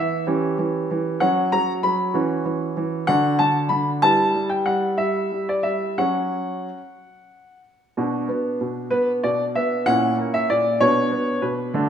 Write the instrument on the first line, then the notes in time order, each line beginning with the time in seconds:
grand piano
Already playing: E3 B3 E4 E5
0.27 E3 C#4 G4
0.58 E3
0.91 E3
1.20 F#3 C#4 F#4 F#5
1.52 F#3 A#5
1.83 F#3 B5
2.14 E3 C#4 F#4
2.45 E3
2.77 E3
3.07 D3 D4 F#4 F#5
3.39 D3 A5
3.69 D3 B5
4.02 G3 E4 B4 A5
4.35 G3
4.49 G5
4.66 G3 F#5
4.98 G3 E5
5.32 G3
5.49 D5
5.63 G3 E5
5.98 F#3 C#4 F#4 F#5
7.97 B2 D4 F#4
8.29 B3
8.61 B2
8.90 B3 B4
9.24 B2 D5
9.55 B3 E5
9.86 A#2 C#4 E4 F#5
10.18 A#3
10.34 E5
10.50 A#2 D5
10.80 B2 B3 D4 C#5
11.11 B3
11.42 B2 B4
11.74 D3 A3 D4